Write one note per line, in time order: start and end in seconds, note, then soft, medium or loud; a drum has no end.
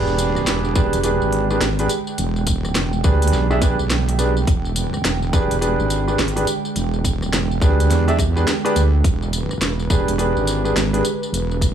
0.00 0.45 E1 loud
0.00 11.74 D3 medium
0.00 11.74 G#3 medium
0.00 0.71 D4 loud
0.00 0.71 G4 medium
0.00 0.71 G#4 loud
0.00 0.71 B4 loud
0.00 9.04 G5 medium
0.07 tambourine soft
0.18 closed hi-hat medium
0.18 tambourine medium
0.36 cross-stick soft
0.36 tambourine soft
0.47 0.74 E1 loud
0.47 snare loud
0.47 closed hi-hat medium
0.47 tambourine soft
0.65 tambourine soft
0.75 0.91 E1 loud
0.75 0.96 D4 medium
0.75 0.96 G4 medium
0.75 0.96 G#4 medium
0.75 0.96 B4 loud
0.75 kick loud
0.75 tambourine medium
0.93 1.19 E1 loud
0.93 closed hi-hat medium
0.93 tambourine soft
1.03 1.46 D4 medium
1.03 1.46 G4 medium
1.03 1.46 G#4 medium
1.03 1.46 B4 medium
1.03 closed hi-hat medium
1.03 tambourine soft
1.22 1.59 G#1 loud
1.22 tambourine soft
1.32 closed hi-hat medium
1.50 1.59 D4 medium
1.50 1.59 G4 medium
1.50 1.59 G#4 medium
1.50 1.59 B4 medium
1.50 tambourine soft
1.61 1.88 G#1 loud
1.61 snare loud
1.61 closed hi-hat medium
1.61 tambourine soft
1.79 1.88 D4 medium
1.79 1.88 G4 medium
1.79 1.88 G#4 medium
1.79 1.88 B4 medium
1.79 closed hi-hat medium
1.79 tambourine soft
1.89 closed hi-hat medium
1.89 tambourine medium
2.07 tambourine soft
2.18 2.57 E1 loud
2.18 closed hi-hat medium
2.18 tambourine soft
2.36 tambourine soft
2.47 kick medium
2.47 closed hi-hat medium
2.47 tambourine medium
2.57 2.74 D#1 loud
2.65 cross-stick soft
2.65 tambourine soft
2.75 3.03 E1 loud
2.75 snare loud
2.75 closed hi-hat medium
2.75 tambourine soft
2.93 tambourine soft
3.04 3.31 D2 loud
3.04 3.46 D4 medium
3.04 3.46 G4 medium
3.04 3.46 G#4 medium
3.04 3.46 B4 loud
3.04 kick loud
3.04 tambourine medium
3.22 closed hi-hat medium
3.22 tambourine soft
3.28 closed hi-hat medium
3.32 3.76 B1 loud
3.32 snare soft
3.32 tambourine soft
3.50 3.59 D4 loud
3.50 3.59 G4 medium
3.50 3.59 G#4 medium
3.50 3.59 E5 loud
3.50 tambourine soft
3.61 3.75 D4 medium
3.61 3.75 G4 medium
3.61 3.75 G#4 medium
3.61 3.75 B4 loud
3.61 kick loud
3.61 cross-stick soft
3.61 closed hi-hat medium
3.61 tambourine medium
3.79 4.45 B1 medium
3.79 tambourine soft
3.90 snare loud
3.90 closed hi-hat medium
3.90 tambourine soft
4.09 closed hi-hat medium
4.09 tambourine soft
4.18 4.33 D4 medium
4.18 4.33 G4 medium
4.18 4.33 G#4 medium
4.18 4.33 B4 medium
4.18 closed hi-hat medium
4.18 tambourine medium
4.37 tambourine soft
4.47 5.03 E1 loud
4.47 kick loud
4.47 closed hi-hat medium
4.47 tambourine soft
4.65 tambourine soft
4.76 closed hi-hat medium
4.76 tambourine medium
4.94 cross-stick soft
4.94 tambourine soft
5.04 5.31 E1 loud
5.04 snare loud
5.04 closed hi-hat medium
5.04 tambourine soft
5.22 tambourine soft
5.33 5.48 E1 loud
5.33 5.54 D4 medium
5.33 5.53 G4 medium
5.33 5.54 G#4 medium
5.33 5.54 B4 loud
5.33 kick loud
5.33 tambourine medium
5.51 5.76 E1 loud
5.51 closed hi-hat medium
5.51 tambourine soft
5.61 6.04 D4 medium
5.61 6.04 G4 medium
5.61 6.04 G#4 medium
5.61 6.03 B4 medium
5.61 closed hi-hat medium
5.61 tambourine soft
5.79 6.17 G#1 loud
5.79 tambourine soft
5.90 closed hi-hat medium
5.90 tambourine medium
6.08 6.16 D4 medium
6.08 6.16 G4 medium
6.08 6.16 G#4 medium
6.08 6.16 B4 medium
6.08 tambourine soft
6.19 6.45 G#1 loud
6.19 snare loud
6.19 closed hi-hat soft
6.19 tambourine soft
6.28 closed hi-hat medium
6.36 6.45 D4 medium
6.36 6.45 G4 medium
6.36 6.45 G#4 medium
6.36 6.45 B4 medium
6.36 closed hi-hat medium
6.36 tambourine soft
6.47 closed hi-hat medium
6.47 tambourine medium
6.65 tambourine soft
6.76 7.31 E1 loud
6.76 closed hi-hat medium
6.76 tambourine soft
6.94 tambourine soft
7.05 kick medium
7.05 closed hi-hat medium
7.05 tambourine medium
7.22 cross-stick soft
7.22 tambourine soft
7.33 7.60 E1 loud
7.33 snare loud
7.33 closed hi-hat medium
7.33 tambourine soft
7.51 tambourine soft
7.61 7.88 D2 loud
7.61 8.04 D4 medium
7.61 8.04 G4 medium
7.61 8.04 G#4 medium
7.61 8.04 B4 loud
7.61 kick loud
7.61 tambourine medium
7.80 closed hi-hat medium
7.80 tambourine soft
7.90 8.45 E2 loud
7.90 snare soft
7.90 closed hi-hat medium
7.90 tambourine soft
8.08 8.16 D4 loud
8.08 8.16 G4 medium
8.08 8.16 G#4 medium
8.08 8.16 E5 loud
8.08 closed hi-hat soft
8.08 tambourine soft
8.19 kick loud
8.19 cross-stick soft
8.19 closed hi-hat medium
8.19 tambourine medium
8.36 8.45 D4 medium
8.36 8.45 G4 medium
8.36 8.45 G#4 medium
8.36 8.45 B4 loud
8.36 tambourine soft
8.47 snare loud
8.47 closed hi-hat medium
8.47 tambourine soft
8.65 8.80 D4 loud
8.65 8.80 G4 medium
8.65 8.80 G#4 medium
8.65 8.80 B4 loud
8.65 closed hi-hat medium
8.65 tambourine soft
8.76 9.03 D2 loud
8.76 closed hi-hat medium
8.76 tambourine medium
9.04 9.60 E1 loud
9.04 11.74 B4 medium
9.04 kick loud
9.04 closed hi-hat medium
9.04 tambourine soft
9.22 tambourine soft
9.33 closed hi-hat medium
9.33 tambourine medium
9.51 cross-stick soft
9.51 tambourine soft
9.61 9.88 E1 medium
9.61 snare loud
9.61 closed hi-hat medium
9.61 tambourine soft
9.79 tambourine soft
9.90 10.05 E1 loud
9.90 10.11 D4 medium
9.90 10.11 G4 medium
9.90 10.11 G#4 medium
9.90 10.11 B4 loud
9.90 kick loud
9.90 tambourine medium
10.08 10.34 E1 loud
10.08 closed hi-hat medium
10.08 tambourine soft
10.18 10.60 D4 medium
10.18 10.61 G4 medium
10.18 10.60 G#4 medium
10.18 10.61 B4 medium
10.18 closed hi-hat medium
10.18 tambourine soft
10.36 10.74 G#1 loud
10.36 tambourine soft
10.47 closed hi-hat medium
10.47 tambourine medium
10.64 10.73 D4 medium
10.64 10.73 G4 medium
10.64 10.73 G#4 medium
10.64 10.73 B4 medium
10.64 tambourine soft
10.75 11.02 G#1 loud
10.75 snare loud
10.75 closed hi-hat medium
10.75 tambourine soft
10.93 11.02 D4 medium
10.93 11.02 G4 medium
10.93 11.02 G#4 medium
10.93 11.02 B4 medium
10.93 closed hi-hat medium
10.93 tambourine soft
11.05 closed hi-hat medium
11.05 tambourine medium
11.23 tambourine soft
11.32 11.74 E1 loud
11.32 closed hi-hat medium
11.32 tambourine soft
11.51 tambourine soft
11.61 kick medium
11.61 closed hi-hat medium
11.61 tambourine medium